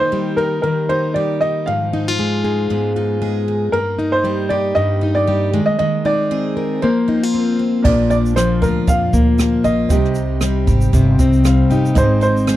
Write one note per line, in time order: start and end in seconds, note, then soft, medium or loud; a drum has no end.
0.00 0.63 D#3 medium
0.00 1.04 D#3 medium
0.00 0.62 A#3 medium
0.00 0.38 D#4 medium
0.00 0.89 D#4 medium
0.00 0.37 A#4 medium
0.00 0.38 C5 medium
0.12 1.15 G3 medium
0.12 1.15 G4 medium
0.37 0.89 D#4 medium
0.37 0.61 A#4 medium
0.37 1.72 A#4 medium
0.62 2.11 D#3 medium
0.62 1.72 A#3 soft
0.62 0.89 A#4 medium
0.89 1.93 D#4 medium
0.89 1.41 D#4 medium
0.89 1.16 C5 medium
1.14 1.73 G3 medium
1.14 1.73 G4 medium
1.14 1.41 D5 medium
1.41 1.93 D#4 soft
1.41 1.67 D#5 medium
1.66 2.69 G#2 medium
1.66 3.73 F3 medium
1.66 3.43 F5 medium
1.93 2.44 D#4 medium
1.93 2.08 D#4 medium
2.08 2.95 F4 soft
2.19 3.21 G#3 medium
2.19 3.20 G#4 medium
2.44 2.96 D#4 medium
2.44 3.79 G#4 medium
2.70 3.72 G#2 medium
2.70 3.73 B3 medium
2.96 3.48 D#4 medium
2.96 3.79 F4 medium
3.22 3.79 G#3 medium
3.22 3.79 G#4 medium
3.48 3.99 D#4 soft
3.72 4.75 G2 medium
3.72 4.76 A#3 medium
3.72 4.14 A#4 medium
3.99 5.02 D#4 medium
3.99 4.50 D#4 medium
4.12 4.51 C5 medium
4.24 5.27 G3 medium
4.24 5.26 G4 medium
4.49 5.00 D#4 medium
4.49 5.59 G4 medium
4.49 4.73 D5 medium
4.75 5.59 G2 medium
4.75 5.16 D#5 loud
5.01 5.59 D#4 medium
5.15 5.68 D5 loud
5.27 5.53 G3 medium
5.27 5.59 G4 medium
5.53 5.78 D#3 medium
5.53 5.79 G#3 medium
5.66 5.77 D#5 medium
5.79 6.82 D#3 medium
5.79 6.82 G#3 medium
5.79 6.03 D#5 medium
6.05 6.56 C4 soft
6.05 6.88 D#4 medium
6.05 6.85 D5 loud
6.31 6.88 C4 medium
6.31 6.88 G#4 medium
6.57 6.88 C4 soft
6.57 7.38 A#4 medium
6.82 7.84 F3 medium
6.82 8.37 A#3 medium
6.82 7.55 C5 medium
7.08 7.58 C4 medium
7.08 7.23 D#4 medium
7.23 7.91 F4 soft
7.34 7.91 C4 medium
7.34 8.61 F4 medium
7.59 7.91 C4 medium
7.82 8.58 A#1 loud
7.82 8.87 A#2 medium
7.82 9.90 F3 medium
7.82 9.85 A#3 medium
7.82 9.86 D4 medium
7.82 9.87 F4 medium
7.82 8.09 D5 medium
7.82 kick loud
7.82 crash medium
7.87 9.88 D5 medium
8.10 9.13 D4 medium
8.10 8.16 D5 medium
8.10 shaker soft
8.26 shaker soft
8.36 9.39 F3 medium
8.36 8.86 A#3 medium
8.36 8.63 C5 medium
8.36 cross-stick medium
8.36 shaker medium
8.62 8.83 D2 medium
8.62 9.63 F4 medium
8.62 8.88 A#4 medium
8.62 kick medium
8.62 shaker soft
8.87 9.09 F2 medium
8.87 9.96 A#2 medium
8.87 9.37 A#3 medium
8.87 9.67 F5 medium
8.87 kick medium
8.87 shaker medium
9.13 9.56 D2 medium
9.13 9.96 A#3 medium
9.13 kick medium
9.13 shaker medium
9.38 9.97 F3 medium
9.38 9.96 A#3 soft
9.38 cross-stick loud
9.38 shaker medium
9.64 9.86 A#1 medium
9.64 9.96 F4 medium
9.64 11.66 D#5 medium
9.64 shaker soft
9.89 10.64 C2 medium
9.89 10.93 C3 medium
9.89 11.96 G3 medium
9.89 11.91 C4 medium
9.89 11.92 D#4 medium
9.89 11.93 G4 medium
9.89 kick loud
9.89 shaker medium
9.93 11.93 D#5 medium
10.04 cross-stick soft
10.15 11.18 D#4 medium
10.15 shaker soft
10.41 11.45 G3 medium
10.41 10.93 C4 medium
10.41 cross-stick medium
10.41 shaker medium
10.67 10.88 G#1 medium
10.67 11.69 G4 medium
10.67 kick medium
10.67 shaker soft
10.81 shaker medium
10.93 11.14 G1 medium
10.93 12.02 C3 medium
10.93 11.44 C4 medium
10.93 kick medium
10.93 shaker medium
11.19 11.61 C2 medium
11.19 12.57 C4 medium
11.19 12.21 D#4 medium
11.19 kick medium
11.19 shaker medium
11.33 shaker soft
11.44 12.02 G3 medium
11.44 11.95 C4 medium
11.44 11.69 F5 medium
11.44 cross-stick loud
11.44 shaker medium
11.70 11.91 G1 medium
11.70 12.57 D#4 medium
11.70 12.02 G4 medium
11.70 11.94 G5 medium
11.70 shaker soft
11.86 shaker soft
11.93 12.57 G#1 medium
11.93 12.57 G#2 medium
11.93 12.02 B3 soft
11.93 12.46 C4 medium
11.93 12.57 D#4 medium
11.93 12.57 G#4 medium
11.93 12.57 D#5 medium
11.93 kick loud
11.93 shaker medium
11.98 12.57 C4 medium
11.98 12.21 C5 medium
12.21 12.57 D#4 medium
12.21 12.57 C5 medium
12.21 shaker soft
12.37 shaker soft
12.47 12.57 G#3 medium
12.47 12.57 C4 medium
12.47 cross-stick medium
12.47 shaker medium